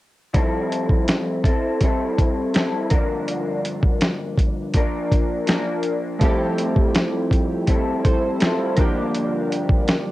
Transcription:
0.34 1.48 F3 medium
0.34 1.47 G3 medium
0.34 1.45 C4 medium
0.34 1.44 E4 medium
0.34 1.42 A4 medium
0.34 kick loud
0.34 closed hi-hat medium
0.72 closed hi-hat medium
0.89 kick medium
1.08 snare medium
1.08 closed hi-hat medium
1.44 1.81 C4 soft
1.44 1.82 E4 soft
1.44 1.81 A4 soft
1.44 kick medium
1.44 closed hi-hat medium
1.80 2.54 G3 soft
1.80 2.54 C4 medium
1.80 2.55 E4 medium
1.80 kick medium
1.80 closed hi-hat medium
1.85 2.56 A4 medium
2.18 kick medium
2.18 closed hi-hat medium
2.54 2.91 G3 soft
2.54 2.91 C4 medium
2.54 2.91 E4 medium
2.54 2.90 A4 medium
2.54 snare medium
2.54 closed hi-hat medium
2.90 4.74 F3 medium
2.90 4.75 A#3 medium
2.90 4.75 D4 medium
2.90 4.74 A#4 medium
2.90 kick medium
2.90 closed hi-hat medium
2.95 4.77 G2 medium
2.95 4.77 D3 medium
3.28 closed hi-hat medium
3.65 closed hi-hat medium
3.83 kick medium
4.01 snare loud
4.01 closed hi-hat medium
4.37 kick medium
4.37 closed hi-hat medium
4.74 5.46 F3 medium
4.74 5.47 A#3 medium
4.74 5.49 D4 medium
4.74 5.49 A#4 medium
4.74 kick medium
4.74 closed hi-hat medium
5.12 kick medium
5.12 closed hi-hat medium
5.47 6.19 F3 medium
5.47 6.22 A#3 medium
5.47 6.22 D4 medium
5.47 6.22 A#4 medium
5.47 snare medium
5.47 closed hi-hat medium
5.83 closed hi-hat medium
6.19 8.72 F3 medium
6.19 7.70 F3 medium
6.19 7.66 G3 medium
6.19 8.73 A3 medium
6.19 7.66 C4 medium
6.19 8.01 E4 medium
6.19 kick loud
6.19 closed hi-hat medium
6.23 7.67 E4 medium
6.23 8.02 G4 medium
6.23 7.69 A4 medium
6.58 closed hi-hat medium
6.76 kick medium
6.95 snare loud
6.95 closed hi-hat medium
7.31 kick medium
7.31 closed hi-hat medium
7.67 8.40 G3 medium
7.67 8.41 C4 medium
7.67 8.41 E4 medium
7.67 8.42 A4 medium
7.67 kick medium
7.67 closed hi-hat medium
8.05 8.40 A4 soft
8.05 8.39 C5 medium
8.05 kick medium
8.05 closed hi-hat medium
8.40 8.77 G3 medium
8.40 8.78 C4 medium
8.40 8.77 E4 medium
8.40 8.59 F4 medium
8.40 8.59 A4 medium
8.40 snare medium
8.40 closed hi-hat medium
8.45 8.76 A4 medium
8.59 8.94 C4 soft
8.59 8.94 E4 medium
8.76 10.12 F3 medium
8.76 10.12 A#3 medium
8.76 10.12 D4 medium
8.76 10.12 A#4 medium
8.76 kick medium
8.76 closed hi-hat medium
8.80 10.12 G2 medium
8.80 10.12 D3 medium
8.80 10.12 F3 medium
8.80 10.12 D4 medium
8.80 10.12 G4 medium
9.15 closed hi-hat medium
9.52 closed hi-hat medium
9.69 kick medium
9.88 snare loud
9.88 closed hi-hat medium

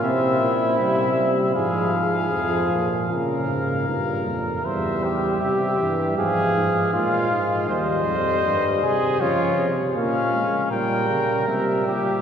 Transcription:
0.03 0.40 C3 medium
0.03 0.77 C4 loud
0.03 1.52 E4 medium
0.03 0.77 E5 medium
0.40 0.78 A#2 medium
0.78 1.53 C3 medium
0.78 1.16 G3 medium
0.78 1.53 E5 medium
1.16 1.54 G3 medium
1.55 2.30 G#2 medium
1.55 2.30 F3 medium
1.55 1.93 G#4 medium
1.55 3.07 F5 medium
1.93 2.93 G#4 medium
2.32 2.72 F2 medium
2.32 3.08 F3 medium
2.70 3.09 A#2 medium
3.10 3.50 A#2 medium
3.10 3.84 C#3 medium
3.10 3.84 A#4 medium
3.10 4.47 F5 medium
3.49 3.90 G#2 medium
3.88 4.28 G2 medium
3.88 4.48 A#2 medium
3.88 4.67 A#4 medium
4.26 4.64 F2 medium
4.64 5.40 E2 medium
4.64 5.81 G3 medium
4.64 5.06 C5 medium
4.64 5.39 E5 medium
5.04 6.18 G4 medium
5.41 5.79 C3 medium
5.41 6.16 E5 medium
5.79 6.17 G2 medium
5.79 6.17 E3 medium
6.17 6.55 G#2 medium
6.17 6.92 F3 medium
6.17 6.92 G#4 medium
6.17 6.92 F5 medium
6.56 6.93 G#2 medium
6.93 7.30 A#2 medium
6.93 7.68 G#3 medium
6.93 7.68 F4 medium
6.93 7.68 F5 medium
7.31 7.68 G#2 medium
7.69 8.06 D#2 medium
7.69 9.17 G3 medium
7.69 8.66 C5 medium
7.69 9.18 D#5 medium
8.06 8.44 F2 medium
8.45 8.84 G2 medium
8.82 9.22 C3 medium
8.82 9.22 G#4 medium
9.21 9.57 C#3 medium
9.21 9.69 F3 medium
9.21 9.70 F4 medium
9.21 9.69 C#5 medium
9.58 9.97 C3 medium
9.96 10.45 A#2 medium
9.96 10.31 A#3 medium
9.96 10.67 C#4 medium
9.96 10.68 F5 medium
10.34 10.71 G#3 medium
10.71 11.07 A#2 medium
10.71 11.47 G3 medium
10.71 11.85 A#4 medium
10.71 11.47 G5 medium
11.09 11.47 C#3 medium
11.48 11.86 C3 medium
11.48 12.22 G3 medium
11.48 12.22 E5 medium
11.87 12.22 A#2 medium
11.87 12.22 G4 medium

